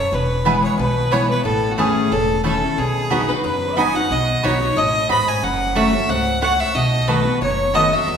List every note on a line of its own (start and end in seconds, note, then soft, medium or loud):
0.00 0.11 F#2 medium
0.00 0.13 C#5 medium
0.00 0.15 C#5 medium
0.12 0.64 E1 medium
0.12 0.76 E2 medium
0.12 0.63 B4 medium
0.45 0.77 E3 medium
0.45 0.77 G#3 medium
0.45 0.55 B3 medium
0.45 0.78 B3 medium
0.45 0.55 E4 medium
0.45 0.78 E4 loud
0.45 0.55 B4 medium
0.45 0.56 G#5 medium
0.64 0.78 C#5 medium
0.78 1.30 B1 medium
0.78 1.42 B2 medium
0.78 1.13 B4 medium
1.11 1.29 E3 medium
1.11 1.29 G#3 medium
1.11 1.21 B3 medium
1.11 1.29 B3 loud
1.11 1.21 E4 medium
1.11 1.27 E4 loud
1.11 1.22 B4 loud
1.11 1.29 C#5 medium
1.11 1.22 G#5 loud
1.29 1.45 B3 soft
1.29 1.44 E4 medium
1.29 1.44 B4 medium
1.45 1.97 A1 medium
1.45 2.08 A2 loud
1.45 1.73 A4 medium
1.45 1.72 A4 medium
1.71 1.80 F#4 medium
1.71 1.79 F#4 medium
1.78 2.10 E3 medium
1.78 1.88 A3 medium
1.78 2.10 A3 medium
1.78 2.10 C#4 loud
1.78 1.88 E4 loud
1.78 2.11 E4 loud
1.78 2.13 G#4 medium
1.78 2.12 G#4 medium
1.78 1.88 C#5 medium
1.78 1.88 A5 loud
2.11 2.63 E1 medium
2.11 2.75 E2 medium
2.11 2.44 A4 medium
2.44 2.61 E3 medium
2.44 2.54 A3 medium
2.44 2.62 A3 medium
2.44 2.62 C#4 medium
2.44 2.54 E4 loud
2.44 2.61 E4 loud
2.44 2.80 A4 medium
2.44 2.78 A4 medium
2.44 2.54 C#5 medium
2.44 2.54 A5 medium
2.62 2.78 C#4 soft
2.62 2.77 E4 medium
2.77 3.29 B1 medium
2.77 3.41 B2 medium
2.77 3.30 G#4 loud
2.77 3.29 G#4 medium
3.10 3.28 F#3 medium
3.10 3.20 B3 medium
3.10 3.28 B3 medium
3.10 3.28 D#4 medium
3.10 3.20 F#4 loud
3.10 3.27 F#4 medium
3.10 3.21 D#5 loud
3.10 3.21 B5 medium
3.28 3.45 D#4 medium
3.28 3.43 F#4 medium
3.28 3.44 B4 medium
3.28 3.43 B4 medium
3.44 3.96 F#1 medium
3.44 4.07 F#2 medium
3.44 3.78 B4 medium
3.44 3.80 B4 medium
3.77 3.94 F#3 medium
3.77 3.86 B3 medium
3.77 3.94 B3 medium
3.77 3.94 D#4 medium
3.77 3.87 F#4 loud
3.77 3.93 F#4 loud
3.77 3.87 D#5 medium
3.77 3.95 G#5 medium
3.77 3.97 G#5 loud
3.77 3.87 B5 medium
3.94 4.11 D#4 soft
3.94 4.10 F#4 medium
3.94 4.13 F#5 loud
3.94 4.11 F#5 medium
4.10 4.36 B1 medium
4.10 4.74 B2 medium
4.10 4.44 D#5 medium
4.10 4.46 D#5 loud
4.43 4.71 B1 medium
4.43 4.60 F#3 medium
4.43 4.53 B3 medium
4.43 4.60 B3 medium
4.43 4.61 D#4 loud
4.43 4.53 F#4 loud
4.43 4.59 F#4 loud
4.43 4.77 C#5 medium
4.43 4.80 C#5 loud
4.43 4.53 D#5 medium
4.43 4.53 B5 medium
4.60 4.77 D#4 soft
4.60 4.76 F#4 medium
4.76 5.05 A1 medium
4.76 5.08 A2 medium
4.76 5.10 D#5 medium
4.76 5.10 D#5 loud
5.09 5.38 G#1 medium
5.09 5.42 G#2 medium
5.09 5.19 B3 medium
5.09 5.19 F#4 medium
5.09 5.19 D#5 medium
5.09 5.19 B5 loud
5.09 5.28 B5 medium
5.09 5.30 B5 loud
5.28 5.43 G#5 medium
5.28 5.45 G#5 loud
5.43 5.95 F#1 medium
5.43 6.06 F#2 medium
5.43 5.76 F#5 medium
5.43 5.78 F#5 loud
5.75 5.93 F#3 medium
5.75 5.85 A3 medium
5.75 5.93 A3 loud
5.75 5.93 C#4 medium
5.75 5.85 F#4 medium
5.75 5.92 F#4 medium
5.75 5.86 C#5 medium
5.75 6.09 E5 medium
5.75 6.11 E5 loud
5.75 5.86 F#5 loud
5.93 6.09 C#4 soft
5.93 6.08 F#4 medium
6.09 6.61 C#2 medium
6.09 6.41 G#2 medium
6.09 6.41 F#5 medium
6.09 6.42 F#5 loud
6.42 6.74 A2 medium
6.42 6.51 A3 medium
6.42 6.52 F#4 loud
6.42 6.52 C#5 medium
6.42 6.61 F#5 loud
6.42 6.60 F#5 medium
6.42 6.52 F#5 loud
6.60 6.75 E5 medium
6.60 6.76 E5 loud
6.75 7.27 B1 loud
6.75 7.38 B2 medium
6.75 7.09 D#5 loud
6.75 7.09 D#5 medium
7.08 7.25 D#3 medium
7.08 7.25 A3 medium
7.08 7.18 B3 medium
7.08 7.26 B3 medium
7.08 7.18 F#4 medium
7.08 7.24 F#4 loud
7.08 7.41 B4 medium
7.08 7.18 D#5 medium
7.08 7.18 A5 medium
7.25 7.42 B3 medium
7.25 7.41 F#4 medium
7.41 7.93 F#1 medium
7.41 8.05 F#2 medium
7.41 7.75 C#5 medium
7.41 7.76 C#5 medium
7.74 7.91 D#3 medium
7.74 7.92 A3 medium
7.74 7.84 B3 medium
7.74 7.92 B3 loud
7.74 7.84 F#4 medium
7.74 7.91 F#4 loud
7.74 7.94 D#5 loud
7.74 7.84 D#5 medium
7.74 7.92 D#5 medium
7.74 7.84 A5 loud
7.92 8.08 B3 soft
7.92 8.07 F#4 medium
7.92 8.17 E5 medium
7.92 8.17 E5 loud
8.08 8.17 E2 loud
8.08 8.17 E2 medium